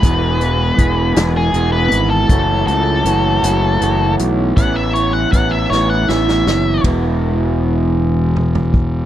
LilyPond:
<<
  \new Staff \with { instrumentName = "Lead electric guitar" } { \time 6/8 \key e \major \tempo 4. = 53 b'4.~ b'16 gis'8 b'8 a'16~ | a'8 a'2 r8 | fis''16 e''16 cis''16 fis''16 fis''16 e''16 cis''16 fis''16 e''4 | r2. | }
  \new Staff \with { instrumentName = "Clean electric guitar" } { \time 6/8 \key e \major <e, b, e gis b gis'>8 <e gis b gis'>8 <e gis b gis'>8 <e, b, e gis b gis'>8 <e gis b gis'>4 | <fis, cis e a cis' fis'>8 <e a cis' fis'>8 <e a cis' fis'>8 <fis, cis e a cis' fis'>8 <e a cis' fis'>4 | <a, e b cis' e'>8 <b cis' e'>8 <e b cis' e'>8 <a, e b cis' e'>8 <e b cis' e'>4 | <e, b, e gis b e'>2. | }
  \new Staff \with { instrumentName = "Fingered electric bass" } { \clef bass \time 6/8 \key e \major e,,4 e,,8 e,,8 e,,8 gis,,8 | fis,,8 cis,8 fis,,8 fis,,8 fis,,8 b,,8 | a,,4 a,,8 a,,8 a,,8 fis,,8 | e,,2. | }
  \new DrumStaff \with { instrumentName = "Drums" } \drummode { \time 6/8 <hh bd>8 hh8 <hh bd>8 <hh sn>8 hh8 hh8 | <hh bd>8 hh8 hh8 hh8 hh8 hh8 | <hh bd>8 hh8 <hh bd>8 sn8 sn16 sn16 sn8 | <bd cymr>4. r8 toml16 tomfh16 bd8 | }
>>